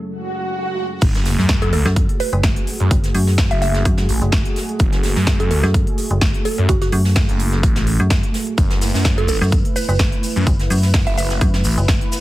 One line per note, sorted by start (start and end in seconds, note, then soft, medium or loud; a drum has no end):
0.00 0.98 F#3 medium
0.00 0.98 C#4 medium
0.00 0.98 G#4 medium
0.00 0.98 A4 medium
0.07 swell medium
1.01 1.36 F#1 loud
1.01 12.20 A3 medium
1.01 8.54 F#4 medium
1.01 8.56 G#4 medium
1.01 kick loud
1.01 closed hi-hat medium
1.01 crash loud
1.01 sub drop medium
1.15 snare medium
1.15 closed hi-hat medium
1.25 snare medium
1.25 closed hi-hat medium
1.25 open hi-hat loud
1.38 1.83 F#2 loud
1.38 snare medium
1.49 kick loud
1.49 snare loud
1.49 closed hi-hat medium
1.62 1.71 A4 medium
1.62 closed hi-hat medium
1.73 1.81 A4 medium
1.73 closed hi-hat medium
1.73 open hi-hat loud
1.85 2.07 F#2 loud
1.85 1.93 A4 medium
1.85 snare medium
1.85 closed hi-hat soft
1.96 kick loud
1.96 closed hi-hat medium
2.09 closed hi-hat medium
2.20 2.28 B4 loud
2.20 closed hi-hat medium
2.20 open hi-hat loud
2.33 2.54 F#1 loud
2.33 2.40 B4 medium
2.33 closed hi-hat soft
2.43 kick loud
2.43 snare loud
2.43 closed hi-hat medium
2.56 closed hi-hat medium
2.67 closed hi-hat medium
2.67 open hi-hat medium
2.80 2.89 F#2 medium
2.80 closed hi-hat soft
2.91 3.13 F#1 loud
2.91 kick loud
2.91 closed hi-hat medium
3.04 snare soft
3.04 closed hi-hat medium
3.14 3.49 F#2 loud
3.14 closed hi-hat medium
3.14 open hi-hat loud
3.27 snare medium
3.38 kick loud
3.38 snare loud
3.38 closed hi-hat medium
3.38 open hi-hat medium
3.51 3.84 F#1 medium
3.51 3.60 E5 medium
3.51 closed hi-hat medium
3.62 3.98 E5 medium
3.62 closed hi-hat medium
3.62 open hi-hat loud
3.74 snare medium
3.74 closed hi-hat soft
3.85 4.07 F#2 loud
3.85 kick loud
3.85 closed hi-hat loud
3.85 closed hi-hat medium
3.97 snare medium
3.97 snare soft
3.97 closed hi-hat medium
4.09 4.20 A1 loud
4.09 closed hi-hat medium
4.09 open hi-hat loud
4.22 4.43 F#1 loud
4.22 closed hi-hat soft
4.32 kick loud
4.32 snare loud
4.32 closed hi-hat medium
4.45 closed hi-hat medium
4.56 snare soft
4.56 closed hi-hat medium
4.56 open hi-hat loud
4.69 closed hi-hat soft
4.79 5.14 F#1 medium
4.79 kick loud
4.79 closed hi-hat medium
4.92 snare medium
4.92 closed hi-hat medium
5.03 snare medium
5.03 closed hi-hat medium
5.03 open hi-hat loud
5.16 5.61 F#2 loud
5.16 snare medium
5.27 kick loud
5.27 snare loud
5.27 closed hi-hat medium
5.40 5.49 A4 medium
5.40 closed hi-hat medium
5.50 5.59 A4 medium
5.50 closed hi-hat medium
5.50 open hi-hat loud
5.63 5.85 F#2 loud
5.63 5.70 A4 medium
5.63 snare medium
5.63 closed hi-hat soft
5.74 kick loud
5.74 closed hi-hat medium
5.87 closed hi-hat medium
5.98 closed hi-hat medium
5.98 open hi-hat loud
6.11 6.32 F#1 loud
6.11 closed hi-hat soft
6.21 kick loud
6.21 snare loud
6.21 closed hi-hat medium
6.34 closed hi-hat medium
6.45 6.63 A4 medium
6.45 closed hi-hat medium
6.45 open hi-hat loud
6.58 6.67 F#2 medium
6.58 closed hi-hat soft
6.69 6.91 F#1 loud
6.69 6.79 F#4 medium
6.69 kick loud
6.69 closed hi-hat medium
6.82 6.89 F#4 medium
6.82 snare soft
6.82 closed hi-hat medium
6.92 7.27 F#2 loud
6.92 7.01 F#4 medium
6.92 closed hi-hat medium
6.92 open hi-hat loud
7.05 snare medium
7.15 kick loud
7.15 snare loud
7.15 closed hi-hat medium
7.15 open hi-hat medium
7.29 7.62 F#1 loud
7.29 closed hi-hat medium
7.39 closed hi-hat medium
7.39 open hi-hat loud
7.52 snare medium
7.52 closed hi-hat soft
7.63 7.98 A1 loud
7.63 kick loud
7.63 closed hi-hat medium
7.76 snare medium
7.76 snare soft
7.76 closed hi-hat soft
7.86 closed hi-hat medium
7.86 open hi-hat loud
8.00 8.21 F#2 medium
8.00 closed hi-hat soft
8.10 kick loud
8.10 snare loud
8.10 closed hi-hat medium
8.23 closed hi-hat medium
8.34 snare soft
8.34 closed hi-hat medium
8.34 open hi-hat loud
8.47 closed hi-hat soft
8.58 8.92 F#1 medium
8.58 12.20 E4 medium
8.58 12.20 B4 medium
8.58 kick loud
8.58 closed hi-hat medium
8.58 shaker soft
8.70 snare medium
8.70 closed hi-hat soft
8.81 snare medium
8.81 closed hi-hat medium
8.81 open hi-hat loud
8.81 shaker medium
8.94 9.39 F#2 medium
8.94 snare medium
8.94 shaker medium
9.05 kick loud
9.05 snare loud
9.05 closed hi-hat medium
9.18 9.26 A4 medium
9.18 closed hi-hat medium
9.28 9.37 A4 medium
9.28 closed hi-hat medium
9.28 open hi-hat medium
9.28 shaker medium
9.41 9.63 F#2 loud
9.41 9.48 A4 medium
9.41 snare medium
9.41 closed hi-hat soft
9.41 shaker medium
9.52 kick loud
9.52 closed hi-hat medium
9.52 shaker soft
9.65 closed hi-hat medium
9.76 9.84 B4 loud
9.76 closed hi-hat medium
9.76 open hi-hat loud
9.76 shaker medium
9.89 10.10 F#1 loud
9.89 9.96 B4 medium
9.89 closed hi-hat soft
9.89 shaker medium
9.99 kick loud
9.99 snare loud
9.99 closed hi-hat medium
9.99 shaker soft
10.12 closed hi-hat medium
10.23 closed hi-hat medium
10.23 open hi-hat medium
10.23 shaker medium
10.36 10.45 F#2 loud
10.36 closed hi-hat soft
10.36 shaker soft
10.46 10.69 F#1 loud
10.46 kick loud
10.46 closed hi-hat medium
10.46 shaker soft
10.60 snare soft
10.60 closed hi-hat medium
10.70 11.05 F#2 loud
10.70 closed hi-hat medium
10.70 open hi-hat loud
10.70 shaker loud
10.83 snare medium
10.83 shaker medium
10.94 kick loud
10.94 snare loud
10.94 closed hi-hat medium
10.94 open hi-hat medium
11.07 11.39 F#1 medium
11.07 11.15 E5 loud
11.07 closed hi-hat medium
11.18 11.54 E5 medium
11.18 closed hi-hat medium
11.18 open hi-hat medium
11.18 shaker medium
11.30 snare medium
11.30 closed hi-hat soft
11.30 shaker medium
11.41 11.63 F#2 loud
11.41 kick loud
11.41 closed hi-hat loud
11.41 closed hi-hat medium
11.41 shaker soft
11.54 snare soft
11.54 snare medium
11.54 closed hi-hat medium
11.64 11.76 A1 loud
11.64 closed hi-hat medium
11.64 open hi-hat loud
11.64 shaker medium
11.77 11.99 F#1 loud
11.77 closed hi-hat soft
11.77 shaker soft
11.88 kick loud
11.88 snare loud
11.88 closed hi-hat medium
11.88 shaker soft
12.01 closed hi-hat medium
12.12 snare soft
12.12 closed hi-hat medium
12.12 open hi-hat medium
12.12 shaker loud